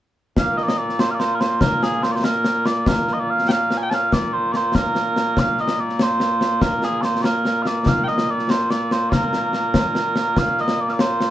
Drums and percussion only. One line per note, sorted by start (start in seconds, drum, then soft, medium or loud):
0.37 concert bass drum medium
0.37 snare medium
0.58 snare soft
0.68 snare medium
0.89 snare soft
0.99 snare loud
1.20 snare medium
1.41 snare medium
1.61 concert bass drum medium
1.61 snare medium
1.83 snare medium
2.03 snare medium
2.24 snare loud
2.44 snare medium
2.66 snare medium
2.86 concert bass drum medium
2.86 snare loud
3.08 snare soft
3.39 snare soft
3.49 snare loud
3.71 snare medium
3.91 snare medium
4.12 concert bass drum medium
4.12 snare medium
4.54 snare medium
4.75 concert bass drum medium
4.75 snare medium
4.95 snare medium
5.16 snare medium
5.37 concert bass drum medium
5.37 snare medium
5.58 snare soft
5.68 snare medium
5.89 snare soft
5.99 snare loud
6.20 snare medium
6.41 snare medium
6.61 concert bass drum medium
6.61 snare medium
6.82 snare medium
7.03 snare medium
7.24 snare loud
7.45 snare medium
7.66 snare medium
7.86 concert bass drum medium
7.86 snare medium
8.07 snare soft
8.18 snare medium
8.39 snare soft
8.50 snare loud
8.71 snare medium
8.91 snare medium
9.12 concert bass drum medium
9.12 snare medium
9.33 snare medium
9.53 snare medium
9.74 concert bass drum medium
9.74 snare loud
9.95 snare medium
10.16 snare medium
10.37 concert bass drum soft
10.37 snare medium
10.58 snare soft
10.68 snare medium
10.89 snare soft
10.99 snare loud
11.21 snare medium